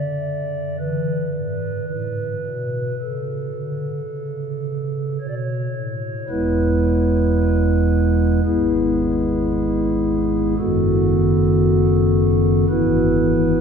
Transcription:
0.00 0.77 D3 medium
0.00 0.77 D5 medium
0.80 1.26 E3 medium
0.80 1.85 B4 medium
1.34 1.81 G#2 medium
1.89 2.35 A2 medium
1.89 2.95 B4 medium
2.45 2.91 B2 soft
3.01 3.47 C#3 soft
3.01 5.18 A4 medium
3.55 4.02 D3 soft
4.09 5.17 C#3 soft
5.21 5.67 B2 soft
5.21 5.27 C#5 medium
5.29 5.34 D5 medium
5.35 6.26 C#5 medium
5.75 6.21 A2 medium
6.29 8.41 E1 medium
6.29 8.41 E2 medium
6.29 8.41 G#3 soft
6.29 8.41 B3 soft
6.29 8.40 E4 soft
6.29 8.41 B4 medium
8.45 10.55 G#1 medium
8.45 10.55 G#2 medium
8.45 10.55 G#3 soft
8.45 10.55 B3 soft
8.45 10.55 E4 soft
8.45 10.55 G#4 medium
10.58 12.65 F#1 medium
10.58 12.66 F#2 medium
10.58 12.66 D#3 soft
10.58 12.66 B3 medium
10.58 12.66 F#4 medium
10.58 12.65 A4 medium
12.69 13.61 G#1 medium
12.69 13.61 G#2 medium
12.69 13.61 E3 medium
12.69 13.61 B3 medium
12.69 13.61 E4 medium
12.69 13.61 B4 medium

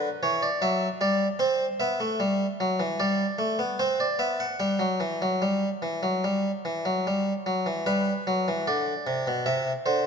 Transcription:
0.23 0.48 E3 medium
0.23 0.42 C#5 medium
0.42 0.62 D5 medium
0.62 0.87 F#3 medium
0.62 0.87 E5 medium
1.01 1.26 G3 medium
1.01 1.26 D5 medium
1.39 1.64 C4 medium
1.39 1.65 C5 medium
1.80 2.00 B3 loud
1.80 2.95 E5 medium
2.00 2.20 A3 medium
2.20 2.45 G3 medium
2.60 2.79 F#3 medium
2.80 2.99 E3 loud
3.00 3.24 G3 medium
3.00 3.77 D5 medium
3.39 3.58 A3 medium
3.59 3.79 B3 loud
3.79 4.05 C4 medium
3.79 3.99 C5 medium
4.00 4.20 D5 medium
4.19 4.45 B3 medium
4.19 4.39 E5 medium
4.40 4.60 F#5 medium
4.60 4.80 G3 medium
4.60 7.41 G5 medium
4.79 5.00 F#3 medium
5.00 5.21 E3 medium
5.22 5.42 F#3 medium
5.42 5.67 G3 medium
5.82 6.03 E3 medium
6.03 6.23 F#3 medium
6.24 6.49 G3 medium
6.65 6.84 E3 medium
6.85 7.05 F#3 medium
7.07 7.32 G3 medium
7.46 7.66 F#3 medium
7.66 7.86 E3 medium
7.86 8.11 G3 medium
7.86 8.64 B4 medium
8.27 8.46 F#3 loud
8.48 8.67 E3 medium
8.67 8.92 D3 medium
8.67 9.44 D5 medium
9.07 9.26 C3 medium
9.27 9.46 B2 medium
9.46 9.71 C3 medium
9.46 9.71 E5 medium
9.86 10.05 D3 medium
9.86 10.07 C5 medium

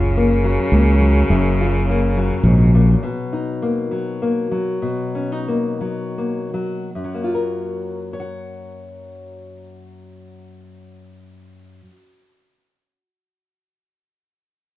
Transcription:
0.00 0.57 F#1 medium
0.00 1.29 F#2 medium
0.00 2.97 C#3 medium
0.00 1.27 F4 soft
0.17 0.72 A#3 medium
0.44 1.00 F#3 medium
0.72 1.22 C#2 medium
0.72 1.89 A#3 soft
1.00 1.64 F#3 soft
1.30 2.30 F#1 medium
1.30 2.45 F#2 medium
1.61 3.00 F4 medium
1.90 3.06 A#3 soft
2.17 3.91 F#3 soft
2.43 2.94 A#1 medium
2.43 2.74 G#2 soft
2.75 3.03 A#2 soft
3.03 4.81 B2 medium
3.33 4.79 D#4 soft
3.62 4.22 A#3 soft
3.91 4.51 F#3 soft
4.22 4.85 A#3 soft
4.51 5.80 F#3 soft
4.82 6.95 B2 medium
5.15 5.32 C#4 soft
5.32 6.95 D#4 soft
5.48 6.17 A#3 soft
5.81 6.53 F#3 soft
6.18 6.90 A#3 soft
6.54 6.89 F#3 soft
6.95 11.81 F#2 soft
7.04 11.90 F#3 soft
7.14 12.00 A#3 soft
7.24 8.13 F4 soft
7.34 8.19 A#4 soft
8.13 12.98 C#5 soft
8.20 13.05 F#5 soft

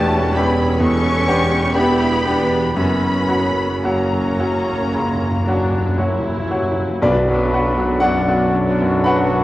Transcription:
0.00 2.78 E1 medium
0.00 2.72 E2 medium
0.00 2.79 E2 loud
0.00 0.33 A3 loud
0.00 0.36 B3 medium
0.00 0.81 C#4 medium
0.00 0.36 D4 medium
0.00 0.36 F#4 medium
0.00 0.36 G4 medium
0.00 0.34 A5 loud
0.00 0.36 A5 loud
0.36 0.77 B3 medium
0.36 0.81 B3 loud
0.36 0.77 D4 medium
0.36 0.81 E4 loud
0.36 0.77 G4 medium
0.36 0.81 B5 loud
0.36 0.81 B5 medium
0.80 1.25 B2 medium
0.80 1.75 B3 medium
0.80 1.75 C#4 loud
0.80 1.26 A4 medium
0.80 1.75 C#6 loud
0.80 1.73 C#6 loud
1.27 1.71 B3 medium
1.27 1.71 D4 medium
1.27 2.77 G4 loud
1.27 1.72 G4 medium
1.75 2.21 B3 medium
1.75 2.75 B3 loud
1.75 2.21 D4 medium
1.75 2.25 E4 medium
1.75 2.21 G4 medium
1.75 2.74 B5 loud
1.75 2.75 B5 loud
2.26 2.73 B3 medium
2.26 2.76 D4 medium
2.26 2.73 D4 medium
2.26 2.74 G4 medium
2.76 6.80 F#1 medium
2.76 6.79 F#2 medium
2.76 3.27 F#2 medium
2.76 2.84 F#2 soft
2.76 3.81 B3 loud
2.76 3.71 C#4 medium
2.76 3.73 F#4 medium
2.76 3.81 B5 loud
2.93 3.00 F#2 soft
3.01 3.08 F#2 soft
3.18 3.25 F#2 soft
3.26 3.34 F#2 soft
3.26 3.79 F#3 medium
3.26 3.79 C#4 medium
3.26 3.79 F#4 medium
3.35 3.42 F#2 medium
3.60 3.68 F#2 soft
3.69 3.76 F#2 medium
3.77 3.85 F#2 medium
3.83 4.35 F#3 medium
3.83 6.49 A#3 medium
3.83 5.42 C#4 medium
3.83 4.35 C#4 medium
3.83 4.35 F#4 medium
3.83 6.49 A#5 loud
3.83 6.50 A#5 medium
3.87 3.95 F#2 soft
3.96 4.03 F#2 medium
4.04 4.11 F#2 medium
4.13 4.20 F#2 medium
4.22 4.29 F#2 medium
4.30 4.38 F#2 medium
4.39 4.46 F#2 medium
4.39 4.89 F#3 medium
4.39 4.89 C#4 medium
4.39 4.89 F#4 medium
4.56 4.64 F#2 medium
4.72 4.80 F#2 medium
4.81 4.89 F#2 medium
4.90 4.97 F#2 medium
4.94 5.44 C#2 medium
4.94 5.05 F#2 medium
5.06 5.13 F#2 medium
5.15 5.21 F#2 medium
5.22 5.30 F#2 medium
5.31 5.38 F#2 medium
5.39 5.47 F#2 medium
5.45 5.55 F#2 medium
5.45 5.94 F#3 medium
5.45 5.94 C#4 medium
5.45 5.97 D4 medium
5.45 5.94 F#4 medium
5.57 5.63 F#2 medium
5.64 5.71 F#2 medium
5.72 5.79 F#2 medium
5.80 5.87 F#2 medium
5.89 5.96 F#2 medium
5.97 6.03 F#2 medium
5.97 6.46 F#3 medium
5.97 6.46 C#4 medium
5.97 7.02 E4 medium
5.97 6.47 F#4 medium
6.04 6.12 F#2 medium
6.13 6.19 F#2 loud
6.20 6.28 F#2 loud
6.29 6.36 F#2 loud
6.37 6.45 F#2 loud
6.46 6.53 F#2 loud
6.51 6.61 F#2 loud
6.51 6.98 F#3 medium
6.51 6.98 C#4 medium
6.51 6.98 F#4 medium
6.63 6.70 F#2 loud
6.71 6.78 F#2 loud
6.80 6.87 F#2 loud
6.88 6.95 F#2 loud
7.01 9.44 B1 loud
7.01 9.02 B1 medium
7.01 9.44 B1 medium
7.01 8.49 B2 loud
7.01 9.44 B2 medium
7.01 9.44 F#3 medium
7.01 7.25 B3 medium
7.01 9.44 D4 medium
7.01 7.25 D4 medium
7.01 7.97 D4 medium
7.01 9.44 F#4 medium
7.01 8.04 B4 loud
7.01 7.98 B4 medium
7.01 7.26 B4 medium
7.01 7.97 D5 loud
7.01 tam-tam medium
7.27 7.67 F#3 medium
7.27 7.52 B3 medium
7.27 7.53 D4 medium
7.27 7.52 F#4 medium
7.53 7.77 B3 medium
7.53 7.77 D4 medium
7.53 7.92 F#4 medium
7.53 7.77 B4 medium
7.76 8.17 F#3 medium
7.76 8.01 B3 medium
7.76 8.02 D4 medium
7.76 8.01 F#4 medium
8.00 8.43 F#2 medium
8.00 8.26 B3 medium
8.00 8.25 D4 medium
8.00 8.27 F#4 medium
8.00 8.25 B4 medium
8.00 9.02 D5 medium
8.00 9.08 D5 loud
8.00 9.01 F#5 loud
8.27 8.53 B3 medium
8.27 8.54 D4 medium
8.27 8.53 F#4 medium
8.27 8.70 F#4 medium
8.53 8.96 F#3 medium
8.53 8.80 B3 medium
8.53 8.79 D4 medium
8.53 8.80 B4 medium
8.79 9.21 F#2 medium
8.79 9.06 B3 medium
8.79 9.06 D4 medium
8.79 9.05 F#4 medium
9.04 9.44 F#3 medium
9.04 9.30 B3 medium
9.04 9.30 D4 medium
9.04 9.44 B4 medium
9.04 9.30 B4 medium
9.04 9.44 F#5 medium
9.04 9.44 F#5 loud
9.04 9.44 B5 loud
9.32 9.44 F#2 medium
9.32 9.44 B3 medium
9.32 9.44 D4 medium
9.32 9.44 F#4 medium

